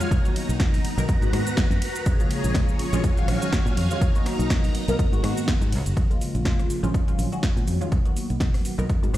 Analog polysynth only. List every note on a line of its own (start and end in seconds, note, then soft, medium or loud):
0.00 0.09 F#3 medium
0.00 0.09 G#3 medium
0.00 0.09 C#4 medium
0.00 0.09 F4 medium
0.24 0.57 D#3 medium
0.24 0.57 F#3 medium
0.24 0.57 A#3 medium
0.24 0.58 B3 medium
0.24 0.58 F#4 medium
0.59 0.95 D#3 medium
0.59 0.95 F#3 medium
0.59 0.95 A#3 medium
0.59 0.95 B3 medium
0.59 0.95 F#4 medium
0.98 1.06 D#3 medium
0.98 1.06 F#3 medium
0.98 1.06 A#3 medium
0.98 1.06 B3 medium
0.98 1.07 A#4 loud
1.22 1.30 D#3 medium
1.22 1.31 G#3 medium
1.22 1.31 A#3 medium
1.22 1.31 B3 medium
1.22 1.31 F#4 medium
1.33 1.55 D#3 medium
1.33 1.55 G#3 medium
1.33 1.55 A#3 medium
1.33 1.55 B3 medium
1.33 1.55 F#4 medium
1.57 1.68 D#3 medium
1.57 1.68 G#3 medium
1.57 1.68 A#3 medium
1.57 1.68 B3 medium
1.57 1.69 F4 medium
2.20 2.52 C#3 medium
2.20 2.53 F3 medium
2.20 2.53 G#3 medium
2.20 2.53 A#3 medium
2.20 2.53 F4 medium
2.55 2.90 C#3 medium
2.55 2.90 F3 medium
2.55 2.90 G#3 medium
2.55 2.90 A#3 medium
2.55 2.90 F4 loud
2.93 3.14 D#3 loud
2.93 3.14 F#3 medium
2.93 3.14 G#3 medium
2.93 3.15 C#4 loud
2.93 3.15 F4 loud
3.17 3.39 D#3 medium
3.17 3.39 F#3 medium
3.17 3.39 G#3 medium
3.17 3.39 C#4 medium
3.17 3.39 F4 loud
3.42 3.87 D#3 medium
3.42 3.88 F#3 medium
3.42 3.88 G#3 medium
3.42 3.88 C#4 medium
3.42 3.88 F#4 medium
3.91 3.99 D#3 medium
3.91 3.99 F#3 medium
3.91 3.99 G#3 medium
3.91 4.00 C#4 medium
3.91 4.00 F4 medium
4.15 4.48 D#3 medium
4.15 4.48 F#3 medium
4.15 4.48 A#3 medium
4.15 4.48 B3 medium
4.15 4.48 F#4 medium
4.50 4.85 D#3 medium
4.50 4.85 F#3 medium
4.50 4.85 A#3 medium
4.50 4.85 B3 medium
4.50 4.85 F#4 medium
4.88 4.97 D#3 loud
4.88 4.97 F#3 medium
4.88 4.97 A#3 medium
4.88 4.97 B3 medium
4.88 4.97 A#4 loud
5.12 5.21 D#3 medium
5.12 5.21 G#3 medium
5.12 5.21 A#3 medium
5.12 5.21 B3 medium
5.12 5.21 F#4 medium
5.23 5.45 D#3 medium
5.23 5.45 G#3 medium
5.23 5.45 A#3 medium
5.23 5.45 B3 medium
5.23 5.46 F#4 medium
5.47 5.58 D#3 medium
5.47 5.58 G#3 medium
5.47 5.58 A#3 medium
5.47 5.58 B3 medium
5.47 5.59 F4 medium
6.10 6.43 C#3 medium
6.10 6.43 F3 medium
6.10 6.43 G#3 medium
6.10 6.43 A#3 medium
6.10 6.43 F4 medium
6.45 6.80 C#3 medium
6.45 6.80 F3 medium
6.45 6.80 G#3 medium
6.45 6.80 A#3 medium
6.45 6.81 F4 loud
6.83 7.04 D#3 loud
6.83 7.04 F#3 medium
6.83 7.05 G#3 medium
6.83 7.05 C#4 medium
6.83 7.05 F4 loud
7.08 7.29 D#3 medium
7.08 7.29 F#3 medium
7.08 7.29 G#3 medium
7.08 7.29 C#4 medium
7.08 7.29 F4 loud
7.32 7.78 D#3 medium
7.32 7.78 F#3 medium
7.32 7.78 G#3 medium
7.32 7.78 C#4 medium
7.32 7.78 F#4 medium
7.81 7.89 D#3 medium
7.81 7.89 F#3 medium
7.81 7.89 G#3 medium
7.81 7.89 C#4 medium
7.81 7.90 F4 medium
8.05 8.38 D#3 medium
8.05 8.38 F#3 medium
8.05 8.38 A#3 medium
8.05 8.38 B3 medium
8.05 8.38 F#4 medium
8.40 8.75 D#3 medium
8.40 8.75 F#3 medium
8.40 8.75 A#3 medium
8.40 8.75 B3 medium
8.40 8.75 F#4 medium
8.78 8.87 D#3 medium
8.78 8.87 F#3 medium
8.78 8.87 A#3 medium
8.78 8.87 B3 medium
8.78 8.87 A#4 loud
9.03 9.11 D#3 medium
9.03 9.11 G#3 medium
9.03 9.11 A#3 medium
9.03 9.11 B3 medium
9.03 9.11 F#4 medium
9.13 9.18 D#3 medium
9.13 9.18 G#3 medium
9.13 9.18 A#3 medium
9.13 9.18 B3 medium
9.13 9.18 F#4 medium